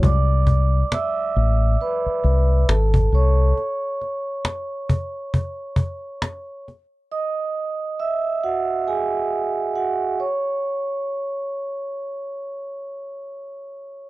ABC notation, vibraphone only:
X:1
M:4/4
L:1/8
Q:"Swing 16ths" 1/4=68
K:E
V:1 name="Vibraphone"
[=d=d']2 [ee']2 [Bb]2 [Aa] [cc']- | [cc']4- [cc'] z3 | [dd']2 [ee'] [Ff] [Gg]2 [Ff] [cc']- | [cc']6 z2 |]